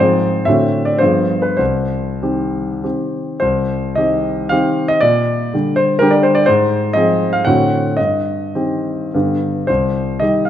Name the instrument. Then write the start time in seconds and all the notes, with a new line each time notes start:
grand piano
Already playing: F3 C5
0.00 G#2 C4 G#4
0.45 A2 D3 C4 F#4 E5
0.85 D5
0.98 G2 F3 B3 G#4 C5
1.42 B4
1.57 C2 C5
2.22 D#3 C4 G4
2.83 D#3 C4 G4
3.40 C2 C5
3.95 D#3 C4 G4 D#5
4.49 D#3 C4 G4 F5
4.88 D#5
5.00 A#2 D5
5.54 D3 G3 G4
5.76 C5
5.99 D3 G3 G4 A#4
6.11 D5
6.23 C5
6.35 D5
6.46 G#2 C5
6.93 F3 C4 G#4 D#5
7.33 F5
7.45 A2 D3 C4 F#4 F#5
7.97 G2 D#5
8.55 D#3 C4 G4
9.14 G2 D3 B3 G4
9.67 C2 C5
10.20 D#3 G3 G4 D#5
10.45 F5